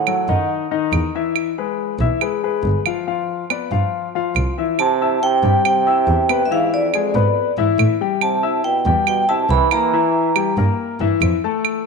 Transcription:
0.00 0.46 A2 medium
0.00 0.46 F#5 medium
0.07 0.25 F#3 medium
0.07 0.25 F#4 medium
0.07 0.25 A4 medium
0.07 claves medium
0.28 0.36 F#2 medium
0.28 0.64 D#3 medium
0.28 0.64 D#4 medium
0.28 0.64 D#5 medium
0.71 1.06 D#3 medium
0.71 1.06 D#4 medium
0.71 1.07 D#5 medium
0.92 1.00 E2 medium
0.92 claves medium
1.15 1.50 E3 medium
1.15 1.50 E4 medium
1.15 1.50 E5 medium
1.36 claves medium
1.58 1.93 G#3 medium
1.58 1.93 G#4 medium
1.58 1.93 B4 medium
1.99 2.07 B1 medium
1.99 2.18 E3 medium
1.99 2.18 E4 medium
1.99 2.18 E5 medium
2.21 2.39 G#3 medium
2.21 2.39 G#4 medium
2.21 2.39 B4 medium
2.21 claves medium
2.43 2.78 G#3 medium
2.43 2.79 G#4 medium
2.43 2.79 B4 medium
2.64 2.72 G1 medium
2.86 3.04 F3 medium
2.86 3.04 F4 medium
2.86 3.04 F5 medium
2.86 claves medium
3.07 3.42 F3 medium
3.07 3.43 F4 medium
3.07 3.43 F5 medium
3.50 3.68 B3 medium
3.50 3.68 B4 medium
3.50 3.68 D5 medium
3.50 claves medium
3.71 3.80 G2 medium
3.71 4.07 F3 medium
3.71 4.07 F4 medium
3.71 4.07 F5 medium
4.15 4.50 F3 medium
4.15 4.50 F4 medium
4.15 4.51 F5 medium
4.36 4.44 C2 medium
4.36 claves medium
4.58 4.75 E3 medium
4.58 4.75 E4 medium
4.58 4.76 E5 medium
4.79 5.19 C3 medium
4.79 5.23 A5 loud
4.79 claves medium
5.01 5.36 E4 medium
5.01 5.36 E5 medium
5.01 5.36 E6 medium
5.23 5.62 C3 medium
5.23 5.64 G5 loud
5.43 5.51 G2 loud
5.43 5.79 G3 medium
5.43 5.79 G4 medium
5.43 5.79 G5 medium
5.65 6.41 C3 medium
5.65 6.48 G5 loud
5.65 claves medium
5.86 6.21 E4 medium
5.86 6.22 E5 medium
5.86 6.22 E6 medium
6.07 6.15 E2 medium
6.29 6.47 B3 medium
6.29 6.47 B4 medium
6.29 6.47 B5 medium
6.29 claves medium
6.45 6.50 G2 medium
6.45 6.51 E5 medium
6.51 6.71 G#2 medium
6.51 6.86 E3 medium
6.51 6.86 E4 medium
6.51 6.86 E5 medium
6.51 6.71 F5 medium
6.73 7.54 F2 medium
6.73 7.54 D5 medium
6.94 7.11 G#3 medium
6.94 7.11 G#4 medium
6.94 7.11 G#5 medium
6.94 claves medium
7.15 7.23 G#2 medium
7.15 7.50 B3 medium
7.15 7.50 B4 medium
7.15 7.50 B5 medium
7.57 7.65 G#2 medium
7.57 7.93 E3 medium
7.57 7.93 E4 medium
7.57 7.93 E5 medium
7.79 7.87 A2 loud
7.79 claves medium
8.01 8.36 G3 medium
8.01 8.36 G4 medium
8.01 8.36 G5 medium
8.21 8.62 C3 medium
8.21 8.66 A5 medium
8.21 claves medium
8.43 8.78 E4 medium
8.43 8.78 E5 medium
8.43 8.78 E6 medium
8.64 9.05 B2 medium
8.64 9.04 G5 medium
8.86 8.94 E2 medium
8.86 9.21 G3 medium
8.86 9.21 G4 medium
8.86 9.22 G5 medium
9.07 9.27 B2 medium
9.07 9.30 G5 medium
9.07 claves medium
9.28 9.49 C3 medium
9.28 9.64 E4 medium
9.28 9.64 E5 medium
9.28 9.51 A5 medium
9.28 9.64 E6 medium
9.50 9.58 C2 loud
9.50 9.70 E3 medium
9.50 9.73 B5 loud
9.71 10.54 E3 medium
9.71 9.89 A#3 medium
9.71 9.90 A#4 medium
9.71 9.90 A#5 medium
9.71 10.54 A#5 medium
9.71 claves medium
9.93 10.28 E3 medium
9.93 10.28 E4 medium
9.93 10.29 E5 medium
10.36 10.54 G3 medium
10.36 10.54 G4 medium
10.36 10.54 G5 medium
10.36 claves medium
10.57 10.65 G2 medium
10.57 10.93 A#3 medium
10.57 10.93 A#4 medium
10.57 10.93 A#5 medium
11.00 11.08 G2 medium
11.00 11.36 E3 medium
11.00 11.36 E4 medium
11.00 11.36 E5 medium
11.21 11.29 F2 medium
11.21 claves medium
11.44 11.79 A3 medium
11.44 11.79 A4 medium
11.44 11.79 A5 medium
11.65 claves medium

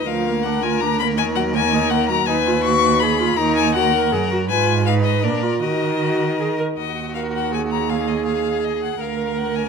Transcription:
0.06 1.19 D2 medium
0.06 0.29 F3 medium
0.06 2.24 A#4 medium
0.06 0.45 F5 loud
0.28 0.46 A#3 medium
0.43 0.65 D4 medium
0.43 0.64 F#5 loud
0.63 0.83 F4 medium
0.63 0.82 G#5 loud
0.81 1.02 D4 medium
0.81 0.99 A#5 loud
0.99 1.17 A#3 medium
0.99 1.07 B5 loud
1.17 2.26 D#2 medium
1.17 1.37 D#3 medium
1.17 1.25 G#5 loud
1.35 1.55 F#3 medium
1.35 1.43 F#5 medium
1.54 1.74 A#3 medium
1.54 1.91 G#5 loud
1.73 1.92 D#4 medium
1.90 2.11 A#3 medium
1.90 2.08 F#5 loud
2.08 2.27 F#3 medium
2.08 2.28 A#5 loud
2.26 3.34 D#2 medium
2.26 2.35 D#4 medium
2.26 3.04 B4 medium
2.26 2.63 G#5 loud
2.46 2.54 F4 medium
2.63 3.03 F#4 medium
2.63 3.01 C#6 loud
3.00 3.22 G#4 medium
3.00 3.37 G#4 medium
3.00 3.38 B5 loud
3.20 3.39 F4 medium
3.37 4.13 D#2 medium
3.37 3.76 D#4 medium
3.37 3.74 A#4 medium
3.37 3.55 A#5 loud
3.55 3.74 G#5 loud
3.74 3.94 F#4 medium
3.74 4.12 A#4 medium
3.74 4.29 F#5 loud
3.95 4.13 A#4 medium
4.12 4.51 F#2 medium
4.12 4.30 G#4 medium
4.12 4.48 A#4 medium
4.31 4.39 F#4 medium
4.49 5.26 G#2 medium
4.49 4.88 F4 medium
4.49 4.86 B4 medium
4.49 4.84 G#5 loud
4.86 5.25 D#4 medium
4.86 5.25 B4 medium
4.86 4.94 F5 loud
5.04 5.26 D#5 medium
5.23 5.62 A#2 medium
5.23 5.43 D4 medium
5.23 5.62 A#4 medium
5.23 5.61 D5 medium
5.42 5.63 F4 medium
5.62 6.57 D#3 medium
5.62 5.97 F#4 medium
5.62 6.57 A#4 medium
5.62 6.56 D#5 medium
6.01 6.37 F#4 medium
6.40 6.48 G#4 medium
6.59 6.67 A#4 medium
6.78 8.97 D#2 medium
6.78 7.86 F#4 medium
6.78 7.13 D#5 medium
7.15 7.54 A#4 medium
7.15 7.22 F5 medium
7.35 7.53 F#5 medium
7.52 9.00 G#4 medium
7.52 7.61 G#5 medium
7.71 7.91 A#5 medium
7.90 8.97 G#4 medium
7.90 8.09 F5 medium
8.08 8.25 D#5 medium
8.26 8.66 F5 medium
8.65 8.82 D#5 medium
8.82 9.02 F#5 medium
9.00 9.69 D2 medium
9.00 9.69 A#4 medium
9.00 9.39 F5 medium
9.38 9.57 F#5 medium
9.55 9.69 G#5 medium

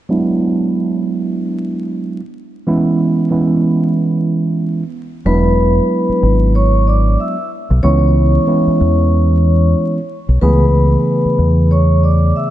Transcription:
0.09 2.19 F#3 medium
0.09 2.19 G#3 medium
0.09 2.20 B3 medium
0.09 2.20 D4 medium
0.09 2.20 E4 loud
2.67 3.27 E3 medium
2.67 3.28 G#3 medium
2.67 3.28 B3 medium
2.67 3.28 C#4 medium
2.67 3.28 E4 loud
3.31 4.82 E3 medium
3.31 4.82 G#3 medium
3.31 4.82 B3 medium
3.31 4.82 C#4 medium
3.31 4.83 E4 medium
5.25 5.79 E1 loud
5.25 7.35 F#3 loud
5.25 7.36 G#3 medium
5.25 7.36 B3 medium
5.25 7.36 D4 medium
5.25 7.36 E4 loud
5.25 6.51 B4 loud
5.25 6.51 B5 medium
6.09 muted fingered electric bass stroke soft
6.23 7.15 G#1 medium
6.55 6.84 C#5 medium
6.55 6.85 C#6 medium
6.87 7.16 D5 medium
6.87 7.17 D6 medium
7.20 7.49 E5 medium
7.20 7.49 E6 medium
7.71 7.82 B1 medium
7.83 8.37 C#2 loud
7.83 8.44 E3 medium
7.83 8.44 G#3 medium
7.83 8.44 B3 medium
7.83 8.44 C#4 medium
7.83 8.44 E4 loud
7.83 9.91 C#5 loud
7.83 9.92 C#6 medium
8.47 9.98 E3 medium
8.47 9.98 G#3 medium
8.47 9.98 B3 medium
8.47 9.98 C#4 medium
8.47 9.99 E4 loud
8.67 muted fingered electric bass stroke soft
8.81 9.74 E2 medium
10.29 10.40 B1 medium
10.42 10.95 C#2 loud
10.42 12.50 C#3 medium
10.42 12.50 E3 medium
10.42 12.50 A3 medium
10.42 12.50 B3 medium
10.42 12.50 G#4 loud
10.42 11.67 B4 loud
10.42 11.67 B5 medium
11.25 muted fingered electric bass stroke soft
11.39 12.31 E2 medium
11.71 12.00 C#5 medium
11.71 12.01 C#6 medium
12.04 12.32 D5 medium
12.04 12.33 D6 medium
12.36 12.50 E5 medium
12.36 12.50 E6 soft

